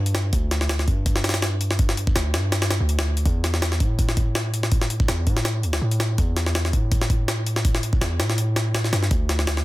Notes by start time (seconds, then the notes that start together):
Already playing: G2
0.06 closed hi-hat
0.15 snare, closed hi-hat
0.33 D2, kick, closed hi-hat
0.51 snare, closed hi-hat
0.61 snare
0.69 snare, closed hi-hat
0.79 snare
0.88 G2, kick, closed hi-hat
1.06 kick, closed hi-hat
1.16 snare
1.24 snare, closed hi-hat
1.29 snare, closed hi-hat
1.34 snare, closed hi-hat
1.42 snare, closed hi-hat
1.61 closed hi-hat
1.71 snare
1.79 kick, closed hi-hat
1.89 snare
1.97 closed hi-hat
2.07 kick
2.16 D2, snare, closed hi-hat
2.34 G2, snare, closed hi-hat
2.52 snare, closed hi-hat
2.62 snare, closed hi-hat
2.70 snare, closed hi-hat
2.80 D2
2.89 closed hi-hat
2.99 snare, closed hi-hat
3.17 closed hi-hat
3.26 E2, kick, closed hi-hat
3.44 snare, closed hi-hat
3.54 snare
3.62 snare, closed hi-hat
3.72 snare
3.80 A2, kick, closed hi-hat
3.99 kick, closed hi-hat
4.09 snare
4.17 kick, closed hi-hat
4.35 snare, closed hi-hat
4.54 closed hi-hat
4.63 snare
4.72 kick, closed hi-hat
4.82 snare
4.90 closed hi-hat
5.00 kick
5.08 E2, snare, closed hi-hat
5.27 A2, kick, closed hi-hat
5.37 snare
5.45 snare, closed hi-hat
5.63 D2, closed hi-hat
5.73 snare, closed hi-hat
5.81 A2
5.91 closed hi-hat
6.00 snare, closed hi-hat
6.18 E2, kick, closed hi-hat
6.37 snare, closed hi-hat
6.46 snare
6.55 snare, closed hi-hat
6.65 snare
6.73 A2, kick, closed hi-hat
6.92 kick, closed hi-hat
7.01 snare
7.10 kick, closed hi-hat
7.28 snare, closed hi-hat
7.46 closed hi-hat
7.56 snare
7.65 kick, closed hi-hat
7.75 snare
7.83 closed hi-hat
7.93 kick
8.01 E2, snare, closed hi-hat
8.19 A2, snare, closed hi-hat
8.30 snare
8.38 closed hi-hat
8.56 snare, closed hi-hat
8.75 snare, closed hi-hat
8.84 snare
8.93 G2, snare, closed hi-hat
9.03 snare
9.11 D2, kick, closed hi-hat
9.29 snare, closed hi-hat
9.39 snare
9.47 snare, closed hi-hat
9.57 snare